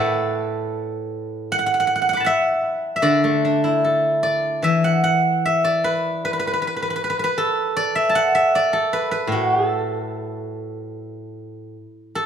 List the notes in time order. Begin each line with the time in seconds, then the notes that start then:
Already playing: A2 A4 B4 D5 E5 F#5 A5 B5 D6
1.52 F#5
1.59 F#5
1.66 F#5
1.74 F#5
1.80 F#5
1.87 F#5
1.96 F#5
2.02 F#5
2.09 F#5
2.13 F#5 B5 D6
2.20 A5
2.25 E5 F#5
2.96 E5
3.02 D3 D5
3.24 A3
3.45 D4
3.64 E4
3.84 A4
4.23 D5
4.62 E3 E5
4.84 F#5
5.04 F#5
5.46 E5
5.64 D5
5.84 B4
6.25 B4
6.33 B4
6.39 B4
6.47 B4
6.53 B4
6.62 B4
6.67 B4
6.77 B4
6.82 B4
6.90 B4
6.96 B4
7.04 B4
7.10 B4
7.19 B4
7.24 B4
7.38 A4
7.77 D5
7.95 E5
8.09 A5
8.15 F#5
8.35 E5
8.55 D5
8.73 A4
8.93 B4
9.11 B4
9.27 A2
9.32 F#4
9.69 A4
12.15 A4